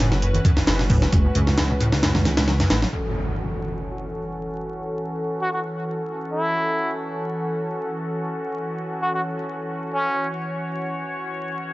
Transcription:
0.00 0.39 F#1 loud
0.00 0.14 A2 loud
0.00 2.89 E3 medium
0.00 2.89 C#4 medium
0.00 2.89 F#4 medium
0.00 2.92 B4 medium
0.00 snare soft
0.00 closed hi-hat medium
0.12 0.18 E3 medium
0.12 snare soft
0.22 0.32 F#2 medium
0.22 closed hi-hat medium
0.34 0.40 F#2 medium
0.34 closed hi-hat soft
0.34 low conga medium
0.45 0.52 F#2 loud
0.45 kick loud
0.45 closed hi-hat medium
0.45 low conga medium
0.57 0.66 F#1 soft
0.57 0.61 F#2 medium
0.57 snare medium
0.67 1.06 F#1 medium
0.67 0.72 E2 medium
0.67 snare loud
0.67 closed hi-hat medium
0.79 0.83 B2 medium
0.79 snare medium
0.89 1.04 A2 loud
0.89 kick loud
0.89 open hi-hat medium
0.89 high conga medium
1.02 1.08 E3 medium
1.02 snare medium
1.12 1.27 F#1 loud
1.12 1.23 F#2 medium
1.12 kick loud
1.12 closed hi-hat medium
1.12 high conga medium
1.25 1.31 F#2 medium
1.35 2.64 C#2 medium
1.35 1.42 F#2 loud
1.35 closed hi-hat medium
1.35 high conga medium
1.47 1.51 F#2 medium
1.47 snare soft
1.58 1.62 E2 medium
1.58 snare loud
1.58 closed hi-hat medium
1.70 1.73 B2 medium
1.80 1.94 A2 loud
1.80 closed hi-hat medium
1.92 1.98 E3 medium
1.92 snare medium
2.03 2.13 F#2 medium
2.03 snare loud
2.03 closed hi-hat medium
2.15 2.27 F#2 medium
2.15 snare soft
2.15 high conga medium
2.15 low conga medium
2.25 2.30 F#1 medium
2.25 snare soft
2.25 closed hi-hat medium
2.25 low conga medium
2.37 2.41 B2 medium
2.37 snare loud
2.37 closed hi-hat medium
2.48 2.52 F#3 medium
2.48 snare medium
2.60 2.69 F#2 loud
2.60 snare soft
2.60 closed hi-hat medium
2.70 2.85 A1 loud
2.70 2.75 F#3 medium
2.70 snare loud
2.70 closed hi-hat medium
2.82 2.89 F#3 medium
2.82 snare medium
2.93 11.73 E3 medium
2.93 11.73 C#4 medium
2.93 11.73 F#4 medium
2.93 10.14 A4 medium
2.93 impact medium
5.41 5.49 F#4 medium
5.53 5.60 F#4 medium
6.32 6.95 E4 medium
9.02 9.10 F#4 medium
9.15 9.21 F#4 medium
9.93 10.27 C#4 medium
10.15 11.73 C#5 medium

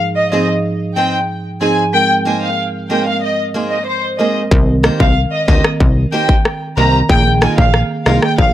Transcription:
0.16 0.30 D#5 medium
0.32 0.48 G#2 medium
0.32 0.49 F3 medium
0.32 0.53 C4 medium
0.32 0.49 D#4 medium
0.32 0.48 D#4 medium
0.32 0.49 G#4 medium
0.32 0.47 G#4 medium
0.32 0.47 C5 medium
0.32 0.46 D#5 medium
0.48 muted steel-string acoustic guitar stroke soft
0.96 1.18 C4 medium
0.96 1.18 D#4 medium
0.96 1.19 G#4 medium
0.96 1.19 C5 medium
0.96 1.11 G5 medium
1.61 1.78 G#2 medium
1.61 1.78 F3 medium
1.61 1.82 C4 medium
1.61 1.78 D#4 medium
1.61 1.83 D#4 medium
1.61 1.78 G#4 medium
1.61 1.83 G#4 medium
1.61 1.83 C5 medium
1.61 1.75 G#5 medium
1.93 2.53 G#3 medium
1.93 2.53 C4 medium
1.93 2.53 A#4 loud
1.93 2.08 G5 loud
2.25 2.47 A#3 medium
2.25 2.47 D#4 medium
2.25 2.48 G#4 medium
2.25 2.48 C5 medium
2.25 2.40 G#5 medium
2.42 2.56 F5 medium
2.90 3.07 G#3 medium
2.90 3.11 A#3 medium
2.90 3.07 C4 medium
2.90 3.06 D#4 medium
2.90 3.06 G#4 medium
2.90 3.07 A#4 medium
2.90 3.05 C5 medium
2.90 3.04 G5 medium
3.06 3.21 F5 medium
3.06 muted steel-string acoustic guitar stroke soft
3.22 3.37 D#5 medium
3.54 3.76 A#3 medium
3.54 3.76 D#4 medium
3.54 3.77 G#4 medium
3.54 3.77 C5 medium
3.71 3.85 D#5 medium
3.87 4.01 C5 medium
4.19 4.36 G#3 medium
4.19 4.41 A#3 medium
4.19 4.36 C4 medium
4.19 4.41 D#4 medium
4.19 4.41 G#4 medium
4.19 4.36 A#4 medium
4.19 4.41 C5 medium
4.19 4.33 D#5 medium
4.51 4.90 C2 loud
4.51 5.11 D#3 medium
4.51 5.11 C4 medium
4.51 5.11 A#4 loud
4.51 kick loud
4.83 5.05 A#3 medium
4.83 5.05 D#4 medium
4.83 5.06 G4 medium
4.83 5.06 C5 medium
4.83 cross-stick loud
5.00 5.26 C2 medium
5.00 5.14 F5 medium
5.00 kick loud
5.32 5.46 D#5 medium
5.48 5.61 D2 loud
5.48 5.65 D#3 medium
5.48 5.70 A#3 medium
5.48 5.65 C4 medium
5.48 5.64 D#4 medium
5.48 5.64 G4 loud
5.48 5.65 A#4 medium
5.48 5.63 C5 medium
5.48 5.62 D#5 medium
5.48 kick medium
5.64 muted steel-string acoustic guitar stroke soft
5.64 cross-stick loud
5.80 6.06 C2 loud
5.80 kick medium
6.12 6.34 A#3 medium
6.12 6.34 D#4 medium
6.12 6.35 G4 medium
6.12 6.35 C5 loud
6.12 6.27 G5 medium
6.29 kick loud
6.45 cross-stick medium
6.77 7.03 C2 loud
6.77 6.94 D#3 medium
6.77 6.99 A#3 medium
6.77 6.94 C4 medium
6.77 6.99 D#4 medium
6.77 6.99 G4 medium
6.77 6.94 A#4 medium
6.77 6.99 C5 medium
6.77 6.91 A#5 medium
7.09 7.48 A#1 loud
7.09 7.69 D#3 medium
7.09 7.69 A#3 medium
7.09 7.69 G#4 loud
7.09 7.24 G5 loud
7.09 kick loud
7.41 7.63 G#3 medium
7.41 7.63 D#4 medium
7.41 7.64 F4 medium
7.41 7.64 A#4 medium
7.41 7.56 G#5 medium
7.41 cross-stick loud
7.58 7.84 A#1 loud
7.58 7.72 F5 medium
7.58 kick loud
7.74 cross-stick medium
8.06 8.19 C2 loud
8.06 8.23 D#3 medium
8.06 8.28 G#3 medium
8.06 8.23 A#3 medium
8.06 8.22 D#4 medium
8.06 8.22 F4 medium
8.06 8.23 G#4 medium
8.06 8.21 A#4 loud
8.06 8.21 F5 medium
8.06 cross-stick medium
8.22 8.37 G5 medium
8.22 muted steel-string acoustic guitar stroke soft
8.22 cross-stick medium
8.38 8.54 A#1 medium
8.38 8.53 F5 medium
8.38 kick medium

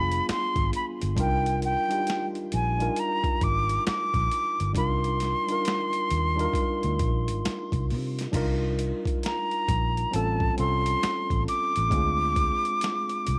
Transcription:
0.00 0.19 F1 medium
0.00 0.83 G3 medium
0.00 0.86 B3 medium
0.00 0.84 D4 medium
0.00 0.84 F4 medium
0.00 0.85 G#4 medium
0.00 0.29 B5 medium
0.12 closed hi-hat medium
0.29 0.71 C6 medium
0.29 muted fingered electric bass stroke soft
0.29 snare loud
0.29 closed hi-hat medium
0.56 0.70 G#1 medium
0.56 kick medium
0.56 closed hi-hat soft
0.73 0.86 B5 medium
0.73 closed hi-hat medium
1.02 1.15 G1 medium
1.02 closed hi-hat medium
1.15 1.75 C2 medium
1.15 1.70 G3 medium
1.15 1.71 D4 medium
1.15 1.71 D#4 medium
1.15 1.72 F4 medium
1.15 kick loud
1.15 closed hi-hat medium
1.20 1.72 A#4 medium
1.20 1.60 G5 medium
1.46 closed hi-hat soft
1.62 2.26 G5 medium
1.62 closed hi-hat medium
1.88 2.53 G3 medium
1.88 2.54 D4 medium
1.88 2.55 D#4 medium
1.88 2.55 F4 medium
1.88 closed hi-hat soft
1.93 2.56 G4 medium
2.07 snare medium
2.07 closed hi-hat medium
2.35 closed hi-hat soft
2.52 2.88 A#1 medium
2.52 3.01 G#5 medium
2.52 closed hi-hat medium
2.78 4.16 G3 medium
2.78 4.17 D4 medium
2.78 4.17 D#4 medium
2.78 4.18 F4 medium
2.78 closed hi-hat soft
2.82 4.18 A#4 medium
2.96 3.45 A#5 medium
2.96 closed hi-hat medium
3.24 kick medium
3.24 closed hi-hat soft
3.41 3.77 G#1 medium
3.41 3.87 D6 loud
3.41 kick medium
3.41 closed hi-hat medium
3.69 closed hi-hat medium
3.87 4.72 D6 loud
3.87 muted fingered electric bass stroke soft
3.87 snare loud
3.87 closed hi-hat medium
4.14 4.28 A#1 medium
4.14 kick medium
4.14 closed hi-hat soft
4.31 closed hi-hat medium
4.60 4.73 G1 medium
4.60 closed hi-hat medium
4.73 5.33 C2 medium
4.73 5.28 G3 medium
4.73 5.29 D4 medium
4.73 5.29 D#4 medium
4.73 5.30 F4 medium
4.73 kick loud
4.73 closed hi-hat medium
4.77 5.30 A#4 medium
4.77 7.86 C6 medium
5.04 closed hi-hat soft
5.20 snare soft
5.20 closed hi-hat medium
5.47 6.12 G3 medium
5.47 6.12 D4 medium
5.47 6.13 D#4 medium
5.47 6.14 F4 medium
5.47 closed hi-hat soft
5.52 6.14 A#4 medium
5.65 snare medium
5.65 closed hi-hat medium
5.93 closed hi-hat soft
6.10 6.46 D#2 medium
6.10 closed hi-hat medium
6.36 7.74 G3 medium
6.36 7.75 D4 medium
6.36 7.76 D#4 medium
6.36 7.76 F4 medium
6.36 closed hi-hat soft
6.41 7.77 A#4 loud
6.54 kick medium
6.54 closed hi-hat medium
6.83 6.97 D2 medium
6.83 closed hi-hat soft
6.99 7.30 A#1 medium
6.99 kick medium
6.99 closed hi-hat medium
7.28 7.42 G#1 medium
7.28 closed hi-hat medium
7.45 muted fingered electric bass stroke soft
7.45 snare loud
7.45 closed hi-hat medium
7.72 7.93 C2 medium
7.72 kick medium
7.72 closed hi-hat soft
7.90 8.26 C3 medium
7.90 open hi-hat soft
8.19 snare soft
8.19 closed hi-hat medium
8.32 8.92 C2 medium
8.32 9.72 G3 medium
8.32 9.73 D4 medium
8.32 9.73 D#4 medium
8.32 9.74 F4 medium
8.32 kick loud
8.32 closed hi-hat medium
8.32 crash medium
8.36 9.75 A#4 medium
8.79 closed hi-hat medium
9.05 kick medium
9.05 closed hi-hat soft
9.23 10.15 A#5 medium
9.23 snare loud
9.23 closed hi-hat medium
9.51 closed hi-hat soft
9.68 10.04 A#1 medium
9.68 kick medium
9.68 closed hi-hat medium
9.97 closed hi-hat soft
10.11 10.49 A1 medium
10.11 10.50 G3 medium
10.11 10.50 C4 medium
10.11 10.51 C#4 medium
10.11 10.52 F4 medium
10.11 10.58 A5 medium
10.11 closed hi-hat medium
10.16 10.52 A4 medium
10.40 kick medium
10.56 10.94 C2 medium
10.56 11.64 G3 medium
10.56 11.65 C4 medium
10.56 11.65 C#4 medium
10.56 11.66 F4 medium
10.56 11.44 C6 loud
10.56 closed hi-hat medium
10.60 11.67 A4 medium
10.86 closed hi-hat medium
11.03 muted fingered electric bass stroke soft
11.03 snare loud
11.03 closed hi-hat medium
11.30 11.44 A1 medium
11.30 kick medium
11.30 closed hi-hat soft
11.48 13.39 D6 loud
11.48 closed hi-hat medium
11.76 11.89 A1 medium
11.76 closed hi-hat medium
11.90 12.50 D2 medium
11.90 13.31 G#3 medium
11.90 13.31 C4 medium
11.90 13.32 D4 medium
11.90 13.32 F4 medium
11.90 kick loud
11.90 closed hi-hat medium
11.95 13.33 G#4 medium
12.36 kick medium
12.36 closed hi-hat medium
12.65 closed hi-hat soft
12.81 snare medium
12.81 closed hi-hat medium
13.09 closed hi-hat soft
13.27 13.39 C2 medium
13.27 closed hi-hat medium

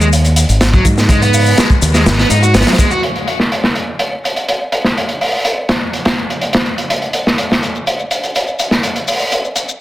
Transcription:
0.00 0.44 D#2 medium
0.00 0.07 G#3 medium
0.00 shaker soft
0.13 closed hi-hat medium
0.13 shaker soft
0.25 closed hi-hat soft
0.25 shaker soft
0.36 closed hi-hat medium
0.36 shaker medium
0.49 0.80 G#1 medium
0.49 closed hi-hat soft
0.49 shaker soft
0.61 snare loud
0.61 closed hi-hat medium
0.61 shaker soft
0.74 0.85 F#3 loud
0.74 kick medium
0.74 shaker soft
0.85 1.52 G#2 medium
0.85 kick medium
0.85 closed hi-hat medium
0.85 shaker medium
0.98 snare soft
0.98 shaker soft
1.09 1.21 G#3 medium
1.09 kick loud
1.09 closed hi-hat medium
1.09 shaker soft
1.22 1.57 B3 loud
1.22 closed hi-hat soft
1.22 shaker soft
1.34 open hi-hat medium
1.34 shaker medium
1.46 shaker soft
1.58 1.69 G#3 medium
1.58 snare loud
1.58 closed hi-hat medium
1.58 shaker soft
1.70 kick medium
1.70 shaker soft
1.82 2.08 D#2 medium
1.82 closed hi-hat medium
1.82 shaker medium
1.94 2.04 G#3 medium
1.94 snare soft
1.94 shaker soft
2.06 2.24 G#1 medium
2.06 snare loud
2.06 closed hi-hat medium
2.06 shaker soft
2.19 2.29 B3 loud
2.19 snare soft
2.19 shaker soft
2.30 2.54 G#2 loud
2.30 2.41 D#4 medium
2.30 closed hi-hat medium
2.30 shaker medium
2.42 2.53 F#4 medium
2.42 shaker soft
2.54 2.64 G#1 medium
2.54 2.66 B3 loud
2.54 snare medium
2.54 closed hi-hat medium
2.54 shaker soft
2.61 snare loud
2.61 closed hi-hat medium
2.67 2.73 F#3 medium
2.67 snare medium
2.67 closed hi-hat medium
2.67 shaker soft
2.73 snare medium
2.73 closed hi-hat medium
2.78 2.90 G#3 medium
2.78 kick loud
2.78 closed hi-hat medium
2.78 shaker medium
2.91 3.01 F#4 loud
2.91 shaker soft
3.03 closed hi-hat medium
3.15 closed hi-hat soft
3.15 shaker soft
3.27 closed hi-hat medium
3.27 shaker medium
3.40 snare soft
3.52 closed hi-hat medium
3.64 snare soft
3.75 closed hi-hat medium
3.75 shaker medium
3.88 shaker soft
3.99 closed hi-hat medium
3.99 shaker soft
4.12 shaker soft
4.24 closed hi-hat medium
4.24 shaker medium
4.36 closed hi-hat soft
4.36 shaker soft
4.48 closed hi-hat medium
4.48 shaker soft
4.60 shaker soft
4.72 closed hi-hat medium
4.72 shaker medium
4.84 snare soft
4.97 closed hi-hat medium
4.97 shaker soft
5.09 closed hi-hat soft
5.09 shaker soft
5.21 open hi-hat medium
5.21 shaker medium
5.33 shaker soft
5.45 closed hi-hat medium
5.45 shaker soft
5.58 shaker soft
5.69 snare loud
5.69 closed hi-hat medium
5.69 shaker medium
5.82 shaker soft
5.93 closed hi-hat medium
5.93 shaker soft
6.05 snare medium
6.05 closed hi-hat medium
6.18 shaker medium
6.30 closed hi-hat medium
6.30 shaker soft
6.41 closed hi-hat medium
6.41 shaker soft
6.53 snare loud
6.53 closed hi-hat medium
6.66 shaker medium
6.78 closed hi-hat medium
6.78 shaker soft
6.90 closed hi-hat medium
6.90 shaker soft
7.02 closed hi-hat soft
7.02 shaker soft
7.13 closed hi-hat medium
7.13 shaker medium
7.27 snare soft
7.27 shaker soft
7.38 closed hi-hat medium
7.38 shaker soft
7.51 snare soft
7.51 shaker soft
7.63 closed hi-hat medium
7.63 shaker medium
7.75 shaker soft
7.87 closed hi-hat medium
7.87 shaker soft
7.99 shaker soft
8.11 closed hi-hat medium
8.11 shaker medium
8.23 closed hi-hat soft
8.23 shaker soft
8.35 closed hi-hat medium
8.35 shaker soft
8.48 shaker soft
8.59 closed hi-hat medium
8.59 shaker medium
8.71 snare soft
8.71 shaker soft
8.83 closed hi-hat medium
8.83 shaker soft
8.96 closed hi-hat soft
8.96 shaker soft
9.08 open hi-hat medium
9.08 shaker medium
9.20 shaker soft
9.32 closed hi-hat medium
9.32 shaker soft
9.44 shaker soft
9.56 closed hi-hat medium
9.56 shaker medium
9.69 shaker soft

